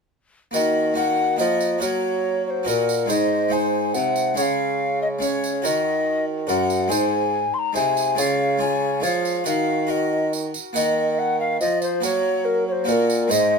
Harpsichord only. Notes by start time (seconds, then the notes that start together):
0.51 D#3 A#3 F#4 A#4
0.94 A#3 F#4 A#4
1.37 F3 A#3 A#4 F#5
1.78 A#3 F#4 A#4
1.83 F#3
2.63 A#3 F#4 A#4
2.67 A#2
3.06 G#2 G#3 D#4 C5
3.49 G#3 D#4 C5
3.95 C3
4.34 C#3 G#3 C#4 C#5
5.19 G#3 C#4 C#5
5.62 D#3 F#4 A#4
6.47 F#2 F#4 A#4
6.88 G#2 G#3 D#4 C5
7.73 C3 G#3 D#4 C5
8.15 C#3 G#3 F4 C#5
8.58 G#3 F4 C#5
9.00 F3 G#3 F4 C#5
9.44 D#3 F#4 A#4
9.87 F#4 A#4
10.73 D#3 A#3 A#4 F#5
11.62 F3
12.00 F#3 A#3 F#4 A#4
12.84 A#2 A#3 F#4 A#4
13.28 G#2 G#3 D#4 C5